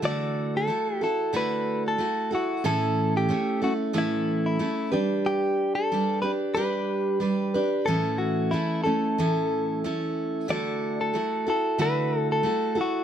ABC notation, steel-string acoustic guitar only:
X:1
M:4/4
L:1/8
Q:"Swing 16ths" 1/4=92
K:D
V:1 name="Steel-string acoustic guitar"
[D,A,EFA]2 [A,EFA] [EFA] [D,A,EFA]2 [A,EFA] [EFA] | [A,,E,A,CEA]2 [A,CEA] [A,CEA] [A,,E,A,CEA]2 [A,CEA] [G,DGB]- | [G,DGB]2 [G,DGB] [DGB] [G,DGB]2 [G,DGB] [DGB] | [A,,E,A,CEA]2 [A,CEA] [A,CEA] [A,,E,A,CEA]2 [A,CEA]2 |
[D,A,EFA]2 [A,EFA] [EFA] [D,A,EFA]2 [A,EFA] [EFA] |]